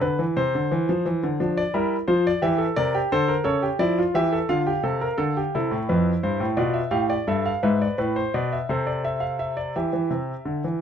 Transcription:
0.01 0.18 D3 medium
0.01 0.23 B4 medium
0.19 0.36 E3 medium
0.37 0.53 C3 medium
0.37 1.37 C5 medium
0.55 0.71 D3 medium
0.71 0.88 E3 medium
0.89 1.05 F3 medium
1.06 1.22 E3 medium
1.23 1.40 D3 medium
1.40 1.61 F3 medium
1.40 1.61 D4 medium
1.57 1.74 D5 medium
1.74 1.95 G3 medium
1.74 1.95 E4 medium
1.74 1.96 A#4 medium
2.08 2.30 F3 medium
2.08 2.29 F4 medium
2.08 2.25 C5 medium
2.27 2.43 D5 medium
2.42 2.64 E3 medium
2.42 2.59 G4 medium
2.42 2.64 E5 medium
2.58 2.76 A4 medium
2.76 2.99 C3 medium
2.76 2.94 A#4 medium
2.76 2.98 D5 medium
2.94 3.11 G4 medium
3.12 3.34 D3 medium
3.12 3.29 A4 medium
3.12 3.34 C5 medium
3.28 3.46 A#4 medium
3.44 3.67 C#3 medium
3.44 3.62 A4 medium
3.44 3.67 C#5 medium
3.63 3.80 G4 medium
3.79 4.01 F3 medium
3.79 3.97 E4 medium
3.79 4.01 D5 medium
3.99 4.15 F4 medium
4.14 4.36 E3 medium
4.14 4.32 G4 medium
4.14 4.37 E5 medium
4.33 4.50 A4 medium
4.49 4.71 D3 medium
4.49 4.67 F4 medium
4.49 5.51 F5 medium
4.67 4.84 G4 medium
4.83 5.06 C3 medium
4.83 5.01 A4 medium
5.01 5.19 A#4 medium
5.18 5.40 D3 medium
5.18 5.36 A4 medium
5.37 5.54 G4 medium
5.55 5.72 C3 medium
5.55 6.57 E4 medium
5.55 5.77 A4 medium
5.71 5.89 A2 medium
5.89 6.11 F2 medium
5.89 6.11 B4 medium
6.23 6.41 G2 medium
6.23 6.46 C5 medium
6.40 6.58 A2 medium
6.57 6.80 B2 medium
6.57 6.80 F4 medium
6.57 6.75 D5 medium
6.74 6.92 E5 medium
6.91 7.14 A2 medium
6.91 7.14 G4 medium
6.91 7.10 F5 medium
7.10 7.28 D5 medium
7.27 7.50 G2 medium
7.27 7.50 A4 medium
7.27 7.46 E5 medium
7.46 7.63 F5 medium
7.63 7.85 G#2 medium
7.63 7.97 B4 medium
7.63 7.81 E5 medium
7.82 7.99 D5 medium
7.98 8.21 A2 medium
7.98 8.16 B4 medium
8.16 8.34 C5 medium
8.34 8.56 B2 medium
8.34 8.51 D5 medium
8.52 8.69 E5 medium
8.69 9.72 C3 medium
8.69 9.73 A4 medium
8.69 8.87 C5 medium
8.87 9.04 D5 medium
9.05 9.22 E5 medium
9.20 9.38 F5 medium
9.39 9.57 E5 medium
9.57 9.74 D5 medium
9.76 9.92 E3 medium
9.76 10.78 G4 medium
9.76 10.78 E5 medium
9.93 10.10 E3 medium
10.10 10.32 C3 medium
10.45 10.63 D3 medium
10.64 10.81 E3 medium

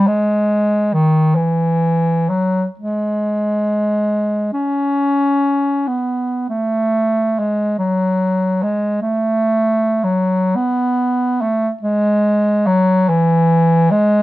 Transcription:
0.07 0.95 G#3 medium
0.94 1.37 D#3 medium
1.35 2.31 E3 medium
2.29 2.65 F#3 medium
2.79 4.50 G#3 medium
4.53 5.89 C#4 medium
5.87 6.48 B3 medium
6.49 7.40 A3 medium
7.39 7.78 G#3 medium
7.78 8.64 F#3 medium
8.63 9.01 G#3 medium
9.02 10.05 A3 medium
10.04 10.57 F#3 medium
10.56 11.43 B3 medium
11.41 11.70 A3 medium
11.82 12.68 G#3 medium
12.66 13.10 F#3 medium
13.09 13.92 E3 medium
13.91 14.22 G#3 medium

